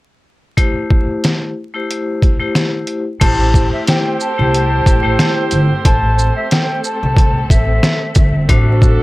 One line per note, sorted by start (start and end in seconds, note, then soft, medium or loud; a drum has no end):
0.57 1.49 A3 loud
0.57 1.50 E4 medium
0.57 1.50 G4 medium
0.57 1.50 C5 loud
0.57 kick medium
0.57 closed hi-hat loud
0.90 kick medium
1.24 snare loud
1.24 closed hi-hat medium
1.74 2.34 A3 medium
1.74 2.35 E4 medium
1.74 2.35 G4 medium
1.74 2.35 C5 loud
1.91 closed hi-hat medium
2.22 kick medium
2.22 closed hi-hat medium
2.39 3.00 A3 medium
2.39 3.01 E4 medium
2.39 3.01 G4 medium
2.39 3.01 C5 loud
2.55 snare loud
2.55 closed hi-hat medium
2.87 closed hi-hat medium
3.20 3.65 A1 loud
3.20 4.13 A3 medium
3.20 8.45 A3 medium
3.20 9.03 C4 medium
3.20 4.13 E4 medium
3.20 4.13 G4 medium
3.20 8.12 G4 medium
3.20 5.83 G4 medium
3.20 8.12 A4 medium
3.20 8.12 C5 loud
3.20 4.14 C5 loud
3.20 3.69 A5 loud
3.20 kick loud
3.20 closed hi-hat loud
3.20 crash loud
3.54 kick medium
3.54 shaker medium
3.73 3.86 E5 medium
3.87 4.17 G5 medium
3.87 snare loud
3.87 closed hi-hat medium
4.20 5.33 A5 medium
4.20 shaker soft
4.38 4.80 C2 loud
4.38 4.98 A3 medium
4.38 4.98 E4 medium
4.38 4.99 G4 medium
4.38 4.99 C5 loud
4.54 closed hi-hat medium
4.86 5.15 A1 medium
4.86 kick loud
4.86 closed hi-hat medium
4.86 shaker medium
5.03 5.64 A3 loud
5.03 5.64 E4 medium
5.03 5.65 G4 medium
5.03 5.65 C5 loud
5.19 snare loud
5.19 closed hi-hat medium
5.51 5.68 G1 medium
5.51 closed hi-hat medium
5.51 shaker medium
5.85 6.29 A1 loud
5.85 8.47 A4 medium
5.85 6.34 A5 loud
5.85 kick loud
5.85 closed hi-hat loud
6.19 shaker medium
6.36 6.49 E5 medium
6.51 6.81 G5 medium
6.51 snare loud
6.51 closed hi-hat medium
6.84 7.46 A5 medium
6.84 shaker soft
7.03 7.43 C2 medium
7.17 kick loud
7.17 closed hi-hat medium
7.49 7.78 A1 medium
7.49 8.45 E5 medium
7.49 kick loud
7.49 closed hi-hat medium
7.49 shaker medium
7.83 snare loud
7.83 closed hi-hat medium
8.15 8.44 G1 loud
8.15 kick loud
8.15 closed hi-hat medium
8.15 shaker medium
8.47 8.93 A1 loud
8.47 9.03 A3 medium
8.47 9.03 D4 medium
8.47 9.03 F#4 medium
8.47 9.03 F#4 loud
8.47 9.03 F#4 medium
8.47 9.03 A4 loud
8.47 9.03 C5 loud
8.47 kick loud
8.47 closed hi-hat loud
8.82 kick loud
8.82 shaker medium